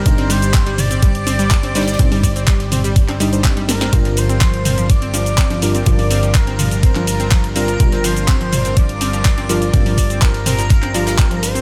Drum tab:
RD |x---x-------x---x---x-------xxxx|x-x-x-------x---x---x---x---x---|x---x---x---x---x---x---x---x---|x-x-x---x---x---x---x---x---x---|
HH |x-x-o-x-x-x-o-x-x-x-o-x-x-x-o-x-|x-o-o-x-x-x-o-x-x-x-o-x-x-x-o-x-|x-x-o-x-x-x-o-x-x-x-o-x-x-x-o-x-|x-o-o-x-x-x-o-x-x-x-o-x-x-x-o-x-|
SH |x---x-x-x---x-x-x---x-x-x---x-x-|x---x-x-x---x-x-x---x-x-x---x-x-|x---x-x-x---x-x-x---x-x-x---x-x-|x---x-x-x---x-x-x---x-x-x---x-x-|
CP |--------x---------------x-------|--------x---------x-----x-------|--------x---------------x-------|--------x---------x-----x-------|
SD |--o-----o---------------o-o-oooo|--------o-o-------------o---o-o-|--o-----o---------------o-o-o---|--------o-o-------------o-------|
T2 |o-----------o-------------------|o-----------o-------------------|o-----------o-------------------|o-----------o-------------------|
CG |--------------------o-----o-----|--o---------------o---------o---|--------------------o-----o-----|--o---------------o-------------|
BD |o-------o-------o-------o-------|o---o---o-------o-------o-------|o-------o-------o-------o-------|o-------o-------o-------o-------|

RD |x---x---x---x---x---x---x---x---|x-x-x---x---x---x---x-x---x-x---|
HH |x-x-o-x-x-x-o-x-x-x-o-x-x-x-o-x-|x-o-o-x-x-x-o-x-x-x-o-x-x-x-o-x-|
SH |x---x-x-x---x-x-x---x-x-x---x-x-|x---x-x-x---x-x-x---x-x-x---x-x-|
CP |--------x---------------x-------|--------x---------x-----x-------|
SD |--o-----o---------------o-o-o---|--------o-o-o-o-o-----o-----o---|
T2 |o-----------o-------------------|o-----------o-------------------|
CG |--------------------o-----o-----|--o---------------o-------------|
BD |o-------o-------o-------o-------|o---o---o-------o-------o-------|